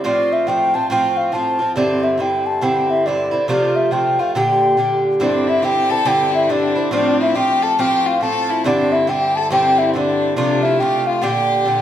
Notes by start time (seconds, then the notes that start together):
0.04 A2 F3 C4 F4 D5
0.33 E5
0.47 A2 F3 C4 F4 G5
0.74 F3 C4 F4 A5
0.90 A2 F3 C4 F4 G5
1.17 F5
1.32 A2 F3 C4 F4 A5
1.59 F3 C4 F4
1.76 G2 D3 C4 E4 D5
2.04 E5
2.18 G2 D3 C4 E4 G5
2.46 A5
2.61 G2 D3 C4 E4 G5
2.90 E5
3.06 G2 D3 C4 E4 D5
3.31 D3 C4 E4
3.48 C3 F3 A3 F4 D5
3.76 E5
3.91 C3 F3 A3 F4 G5
4.19 F3 A3 F4 F5
4.35 A#2 D3 D4 G4 G5
4.77 A#2 D3 D4 G4
5.20 G2 D3 C4 D4 E4 D5
5.47 E4 E5
5.62 G2 D3 C4 E4 G4 G5
5.90 D3 C4 E4 A4 A5
6.05 G2 D3 C4 E4 G4 G5
6.32 E4 E5
6.49 G2 D3 C4 D4 E4 D5
6.75 D3 C4 E4
6.91 A2 F3 C4 D4 F4 D5
7.21 E4 E5
7.34 A2 F3 C4 F4 G4 G5
7.62 A4 A5
7.78 A2 F3 C4 F4 G4 G5
8.06 F4 F5
8.21 A2 F3 C4 F4 A4 A5
8.50 E4
8.64 G2 D3 C4 D4 E4 D5
8.92 E4 E5
9.07 G2 D3 C4 E4 G4 G5
9.36 A4 A5
9.50 G2 D3 C4 E4 G4 G5
9.78 E4 E5
9.89 C4
9.94 G2 D3 C4 D4 E4 D5
10.36 C3 F3 A3 D4 F4 D5
10.63 E4 E5
10.80 C3 F3 A3 F4 G4 G5
11.07 F4 F5
11.22 A#2 D3 D4 G4 G5
11.65 A#2 D3 D4 G4